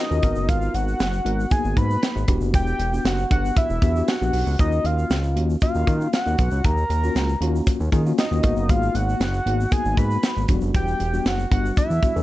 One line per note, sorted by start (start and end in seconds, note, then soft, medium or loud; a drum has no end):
0.00 0.50 D#5 medium
0.10 0.21 D#2 loud
0.10 0.23 C#4 medium
0.10 0.23 F4 medium
0.10 0.21 F#4 medium
0.10 0.22 A#4 medium
0.10 shaker medium
0.22 0.34 G#1 loud
0.22 1.05 B3 medium
0.22 1.05 D#4 medium
0.22 1.05 F#4 medium
0.22 1.05 A#4 medium
0.22 kick medium
0.22 closed hi-hat medium
0.22 shaker soft
0.36 0.50 F#1 medium
0.36 shaker medium
0.49 0.69 G#1 loud
0.49 0.76 F5 loud
0.49 kick loud
0.49 closed hi-hat medium
0.49 shaker medium
0.62 shaker soft
0.74 0.95 G#1 loud
0.74 1.53 F#5 loud
0.74 closed hi-hat medium
0.74 shaker medium
0.88 shaker soft
1.00 1.21 F#1 medium
1.00 snare loud
1.00 closed hi-hat medium
1.00 shaker medium
1.13 shaker medium
1.25 1.46 G#1 medium
1.25 1.44 B3 medium
1.25 1.44 D#4 medium
1.25 1.44 F#4 medium
1.25 1.44 A#4 medium
1.25 closed hi-hat medium
1.40 shaker medium
1.50 2.24 A#3 medium
1.50 2.24 B3 medium
1.50 2.24 D#4 medium
1.50 2.24 F#4 medium
1.50 1.79 G#5 loud
1.50 kick loud
1.50 closed hi-hat loud
1.50 shaker medium
1.65 1.75 G#1 loud
1.65 shaker soft
1.77 1.97 G#2 loud
1.77 2.29 B5 loud
1.77 kick loud
1.77 closed hi-hat medium
1.77 shaker medium
1.90 shaker soft
2.03 snare loud
2.03 closed hi-hat loud
2.03 shaker medium
2.16 2.26 G#1 loud
2.16 shaker medium
2.28 2.39 E1 medium
2.28 2.79 B3 medium
2.28 2.79 D4 medium
2.28 2.80 F#4 medium
2.28 2.80 G4 medium
2.28 kick medium
2.28 closed hi-hat medium
2.28 shaker soft
2.41 2.55 F#1 loud
2.41 shaker soft
2.54 2.74 E1 loud
2.54 3.08 G5 loud
2.54 kick loud
2.54 closed hi-hat medium
2.54 shaker medium
2.67 shaker soft
2.79 3.00 E1 medium
2.79 closed hi-hat medium
2.79 shaker soft
2.93 3.20 B3 medium
2.93 3.20 D4 medium
2.93 3.20 F#4 medium
2.93 3.20 G4 medium
2.93 shaker medium
3.05 3.25 F#1 loud
3.05 3.31 F#5 loud
3.05 snare loud
3.05 closed hi-hat medium
3.05 shaker medium
3.18 shaker soft
3.30 3.51 G1 medium
3.30 3.68 B3 medium
3.30 3.68 D4 medium
3.30 3.68 F#4 medium
3.30 3.68 G4 medium
3.30 3.55 F#5 medium
3.30 kick loud
3.30 closed hi-hat medium
3.45 shaker medium
3.56 4.10 E5 loud
3.56 kick loud
3.56 closed hi-hat loud
3.56 shaker medium
3.70 3.80 E1 loud
3.70 shaker soft
3.82 4.02 E2 medium
3.82 3.92 B3 medium
3.82 3.92 D4 medium
3.82 3.92 F#4 medium
3.82 3.92 G4 medium
3.82 kick loud
3.82 closed hi-hat medium
3.82 shaker soft
3.96 4.13 B3 medium
3.96 4.14 D4 medium
3.96 4.14 F#4 medium
3.96 4.14 G4 medium
3.96 shaker soft
4.08 4.60 F#5 medium
4.08 snare loud
4.08 closed hi-hat medium
4.08 shaker medium
4.21 4.31 A#1 medium
4.21 4.48 B3 medium
4.21 4.49 D4 medium
4.21 4.49 F#4 medium
4.21 4.49 G4 medium
4.21 shaker medium
4.33 4.44 B1 medium
4.33 open hi-hat medium
4.33 shaker soft
4.46 4.56 C#2 medium
4.46 shaker soft
4.59 4.80 D#2 loud
4.59 5.14 A#3 medium
4.59 5.14 C#4 medium
4.59 5.14 F4 medium
4.59 5.14 F#4 medium
4.59 4.87 D#5 medium
4.59 kick loud
4.59 closed hi-hat medium
4.59 shaker medium
4.72 shaker soft
4.85 5.05 D#2 medium
4.85 5.37 F5 medium
4.85 closed hi-hat medium
4.85 shaker soft
4.98 shaker medium
5.10 5.38 C#2 medium
5.10 snare medium
5.10 closed hi-hat medium
5.10 shaker medium
5.23 shaker soft
5.36 5.57 D#2 medium
5.36 5.55 A#3 medium
5.36 5.55 C#4 medium
5.36 5.55 F4 medium
5.36 5.55 F#4 medium
5.36 closed hi-hat medium
5.50 shaker medium
5.61 6.34 A#3 medium
5.61 6.34 C#4 medium
5.61 6.34 F4 medium
5.61 6.35 F#4 medium
5.61 6.10 F5 medium
5.61 kick loud
5.61 closed hi-hat loud
5.61 shaker medium
5.75 5.85 D#2 loud
5.75 shaker medium
5.87 6.08 D#3 loud
5.87 kick loud
5.87 closed hi-hat medium
5.87 shaker soft
6.01 shaker medium
6.13 6.66 F#5 medium
6.13 snare loud
6.13 closed hi-hat loud
6.13 shaker medium
6.26 6.36 D#2 medium
6.26 shaker medium
6.38 6.50 B1 loud
6.38 kick medium
6.38 closed hi-hat medium
6.38 shaker soft
6.51 6.62 C#2 medium
6.51 shaker medium
6.64 6.85 D#2 loud
6.64 7.67 A#5 loud
6.64 kick loud
6.64 closed hi-hat medium
6.64 shaker medium
6.77 shaker soft
6.90 7.10 D#2 loud
6.90 closed hi-hat medium
6.90 shaker soft
7.03 7.30 A#3 medium
7.03 7.31 C#4 medium
7.03 7.31 F4 medium
7.03 7.31 F#4 medium
7.03 shaker medium
7.15 7.36 C#2 medium
7.15 snare medium
7.15 closed hi-hat medium
7.15 shaker medium
7.29 shaker medium
7.41 7.61 D#2 medium
7.41 7.78 A#3 medium
7.41 7.78 C#4 medium
7.41 7.78 F4 medium
7.41 7.78 F#4 medium
7.41 closed hi-hat medium
7.56 shaker medium
7.66 kick loud
7.66 closed hi-hat loud
7.66 shaker medium
7.80 7.90 D#2 loud
7.80 shaker soft
7.92 8.13 D#3 loud
7.92 8.02 A#3 medium
7.92 8.02 C#4 medium
7.92 8.02 F4 medium
7.92 8.02 G#4 loud
7.92 kick loud
7.92 closed hi-hat medium
7.92 shaker medium
8.06 8.24 A#3 medium
8.06 8.24 C#4 medium
8.06 8.24 F4 medium
8.06 8.24 F#4 medium
8.06 shaker medium
8.18 8.71 D#5 medium
8.18 snare loud
8.18 closed hi-hat medium
8.18 shaker medium
8.31 8.41 D#2 medium
8.31 8.42 A#3 medium
8.31 8.44 C#4 medium
8.31 8.44 F4 medium
8.31 8.42 F#4 medium
8.31 shaker medium
8.43 8.55 G#1 loud
8.43 9.26 A#3 medium
8.43 9.26 B3 medium
8.43 9.26 D#4 medium
8.43 9.26 F#4 medium
8.43 kick loud
8.43 closed hi-hat medium
8.43 shaker soft
8.56 8.71 F#1 loud
8.56 shaker medium
8.69 8.90 G#1 loud
8.69 8.97 F5 loud
8.69 kick loud
8.69 closed hi-hat medium
8.69 shaker medium
8.82 shaker soft
8.95 9.15 G#1 loud
8.95 9.73 F#5 loud
8.95 closed hi-hat medium
8.95 shaker soft
9.09 shaker medium
9.20 9.41 F#1 loud
9.20 snare loud
9.20 closed hi-hat medium
9.20 shaker medium
9.34 shaker soft
9.46 9.67 G#1 medium
9.46 9.65 A#3 medium
9.46 9.65 B3 medium
9.46 9.65 D#4 medium
9.46 9.65 F#4 medium
9.46 closed hi-hat medium
9.61 shaker medium
9.71 10.44 A#3 medium
9.71 10.44 B3 medium
9.71 10.44 D#4 medium
9.71 10.45 F#4 medium
9.71 9.99 G#5 loud
9.71 kick loud
9.71 closed hi-hat loud
9.71 shaker medium
9.85 9.95 G#1 loud
9.85 shaker soft
9.97 10.18 G#2 medium
9.97 10.49 B5 loud
9.97 kick medium
9.97 closed hi-hat medium
9.97 shaker soft
10.11 shaker medium
10.23 snare medium
10.23 closed hi-hat loud
10.23 shaker medium
10.37 10.46 G#1 loud
10.37 shaker medium
10.48 10.60 E1 loud
10.48 10.55 F#3 medium
10.48 11.00 B3 medium
10.48 11.00 D4 medium
10.48 11.00 F#4 medium
10.48 kick medium
10.48 closed hi-hat medium
10.48 shaker soft
10.54 11.03 G3 medium
10.61 10.72 F#1 loud
10.61 shaker medium
10.74 10.95 E1 loud
10.74 11.29 G5 loud
10.74 kick loud
10.74 closed hi-hat medium
10.74 shaker medium
10.87 shaker soft
11.00 11.20 E1 medium
11.00 closed hi-hat medium
11.00 shaker soft
11.13 11.40 G3 medium
11.13 11.41 B3 medium
11.13 11.41 D4 medium
11.13 11.41 F#4 medium
11.13 shaker medium
11.25 11.46 F#1 medium
11.25 11.52 F#5 loud
11.25 snare medium
11.25 closed hi-hat medium
11.25 shaker medium
11.39 shaker soft
11.51 11.72 G1 medium
11.51 11.88 G3 medium
11.51 11.88 B3 medium
11.51 11.88 D4 medium
11.51 11.88 F#4 medium
11.51 11.76 F#5 loud
11.51 kick loud
11.51 closed hi-hat medium
11.66 shaker medium
11.77 12.23 E5 medium
11.77 kick loud
11.77 closed hi-hat medium
11.77 shaker medium
11.90 12.00 E2 medium
11.90 shaker soft
12.02 12.12 G3 medium
12.02 12.12 B3 medium
12.02 12.12 D4 medium
12.02 12.12 F#4 medium
12.02 kick medium
12.02 closed hi-hat medium
12.02 shaker medium
12.15 12.23 E2 loud
12.15 12.23 G3 medium
12.15 12.23 B3 medium
12.15 12.23 D4 medium
12.15 12.23 A4 medium
12.15 shaker medium